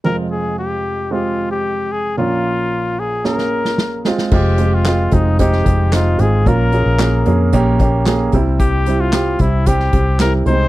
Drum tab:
CC |----------------|----------------|x---------------|----------------|
HH |----------------|----------------|--x-x-x-x-x-x-x-|x-x-x-x-x-x-x-x-|
CP |----------------|----------------|----x-------x---|----x-------x---|
SD |----------------|--------oo-oo-oo|----o----o--o---|----o-------o---|
BD |----------------|----------------|o-----o-o-o-----|o-------o-o---o-|

CC |----------------|
HH |x-x-x-x-x-x-x-x-|
CP |----x-------x---|
SD |----o----o--o---|
BD |o-----o-o-o-----|